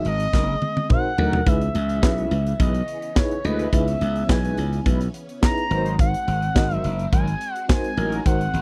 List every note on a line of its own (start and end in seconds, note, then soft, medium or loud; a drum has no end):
0.00 1.43 G#3 medium
0.00 1.43 C4 medium
0.00 0.24 D#4 medium
0.00 0.24 F#4 medium
0.00 1.45 G#4 medium
0.00 0.24 A#4 medium
0.00 0.25 D#5 medium
0.05 0.26 G#1 loud
0.05 0.87 D#5 loud
0.05 closed hi-hat medium
0.20 closed hi-hat medium
0.33 0.55 F#1 medium
0.33 0.46 F#3 medium
0.33 0.46 D#4 medium
0.33 0.46 A#4 loud
0.33 kick loud
0.33 snare medium
0.62 high tom medium
0.77 high tom medium
0.89 1.13 D#4 medium
0.89 1.14 F#4 medium
0.89 1.14 A#4 medium
0.89 1.14 C5 medium
0.89 1.49 F#5 loud
0.89 kick loud
0.89 mid tom medium
1.18 1.40 D2 loud
1.18 1.42 F#3 loud
1.18 1.42 D#4 loud
1.18 1.42 A#4 loud
1.18 floor tom loud
1.33 floor tom loud
1.46 1.68 C#2 loud
1.46 5.67 C#3 medium
1.46 5.67 E3 medium
1.46 5.67 B3 medium
1.46 5.67 C#4 medium
1.46 1.70 D#4 medium
1.46 1.70 E4 medium
1.46 1.70 G#4 medium
1.46 1.70 B4 medium
1.46 2.60 E5 loud
1.46 kick loud
1.46 closed hi-hat loud
1.61 closed hi-hat medium
1.75 2.03 C#2 loud
1.75 closed hi-hat medium
1.89 closed hi-hat medium
2.02 2.24 B1 medium
2.02 2.50 C#4 medium
2.02 2.50 E4 medium
2.02 2.50 G#4 medium
2.02 2.50 B4 medium
2.02 kick loud
2.02 snare loud
2.02 clap medium
2.17 2.29 G#3 medium
2.17 2.29 E4 medium
2.17 2.29 B4 medium
2.17 closed hi-hat soft
2.31 2.52 C#2 loud
2.31 closed hi-hat medium
2.46 closed hi-hat medium
2.59 2.81 B1 loud
2.59 2.72 G#3 medium
2.59 2.72 E4 medium
2.59 2.72 B4 medium
2.59 3.18 D#5 medium
2.59 kick loud
2.59 closed hi-hat medium
2.74 closed hi-hat medium
2.88 closed hi-hat medium
3.02 closed hi-hat medium
3.15 3.40 D#4 medium
3.15 3.40 E4 medium
3.15 3.40 G#4 medium
3.15 3.40 B4 medium
3.15 3.46 C#5 medium
3.15 kick loud
3.15 snare loud
3.15 clap medium
3.31 closed hi-hat soft
3.44 3.66 D2 medium
3.44 3.69 G#3 loud
3.44 3.69 E4 medium
3.44 3.69 B4 loud
3.44 3.75 D#5 medium
3.44 closed hi-hat medium
3.59 closed hi-hat medium
3.72 3.94 C#2 loud
3.72 3.96 D#4 medium
3.72 3.96 E4 medium
3.72 3.96 G#4 medium
3.72 3.97 B4 medium
3.72 4.32 E5 loud
3.72 kick loud
3.72 closed hi-hat medium
3.88 closed hi-hat medium
4.01 4.22 C#2 medium
4.01 closed hi-hat medium
4.16 closed hi-hat medium
4.29 4.51 B1 loud
4.29 4.76 D#4 medium
4.29 4.77 E4 medium
4.29 4.77 G#4 medium
4.29 4.77 B4 medium
4.29 4.87 G#5 loud
4.29 kick loud
4.29 snare loud
4.29 clap medium
4.44 4.56 G#3 medium
4.44 4.56 E4 medium
4.44 4.56 B4 medium
4.44 closed hi-hat medium
4.58 4.79 C#2 loud
4.58 closed hi-hat medium
4.73 closed hi-hat medium
4.86 5.07 B1 loud
4.86 4.99 G#3 medium
4.86 4.99 E4 medium
4.86 4.99 B4 medium
4.86 kick loud
4.86 closed hi-hat medium
5.01 closed hi-hat medium
5.14 closed hi-hat medium
5.29 closed hi-hat medium
5.42 5.66 D#4 medium
5.42 5.66 E4 medium
5.42 5.66 G#4 medium
5.42 5.67 B4 medium
5.42 5.96 A#5 loud
5.42 kick loud
5.42 snare loud
5.42 clap loud
5.58 closed hi-hat medium
5.70 6.13 G#1 loud
5.70 5.95 F#3 loud
5.70 8.62 G#3 medium
5.70 8.62 C4 medium
5.70 6.39 D#4 medium
5.70 5.95 D#4 loud
5.70 6.39 F#4 medium
5.70 8.62 F#4 medium
5.70 6.40 A#4 medium
5.70 5.78 B4 medium
5.70 5.95 C5 loud
5.70 closed hi-hat medium
5.77 6.43 C5 medium
5.86 closed hi-hat medium
5.99 6.74 F#5 loud
5.99 kick loud
5.99 closed hi-hat medium
6.14 closed hi-hat medium
6.28 6.49 G#1 loud
6.28 closed hi-hat medium
6.42 closed hi-hat soft
6.55 6.77 G#1 medium
6.55 7.03 D#4 medium
6.55 7.03 F#4 medium
6.55 7.03 A#4 medium
6.55 7.03 D#5 loud
6.55 kick loud
6.55 snare loud
6.55 clap medium
6.70 6.82 F#3 medium
6.70 6.82 D#4 medium
6.70 6.82 C5 medium
6.70 7.09 E5 loud
6.70 closed hi-hat soft
6.84 7.06 F#1 medium
6.84 closed hi-hat medium
6.99 closed hi-hat medium
7.12 7.34 G#1 loud
7.12 7.25 F#3 medium
7.12 7.25 D#4 medium
7.12 7.25 A#4 medium
7.12 7.53 G#5 loud
7.12 kick loud
7.12 closed hi-hat medium
7.28 closed hi-hat medium
7.41 closed hi-hat medium
7.53 7.65 F#5 loud
7.53 closed hi-hat medium
7.68 7.92 D#4 medium
7.68 7.93 F#4 medium
7.68 7.93 A#4 medium
7.68 7.93 C5 medium
7.68 8.27 G#5 loud
7.68 kick loud
7.68 snare loud
7.68 clap loud
7.84 closed hi-hat medium
7.97 8.19 A1 medium
7.97 8.21 F#3 loud
7.97 8.21 D#4 medium
7.97 8.21 A#4 loud
7.97 closed hi-hat medium
8.12 closed hi-hat medium
8.25 8.47 G#1 loud
8.25 8.49 D#4 medium
8.25 8.49 F#4 medium
8.25 8.50 A#4 medium
8.25 8.50 C5 medium
8.25 8.62 F#5 loud
8.25 kick loud
8.25 closed hi-hat medium
8.41 closed hi-hat medium
8.54 8.62 G#1 loud
8.54 closed hi-hat medium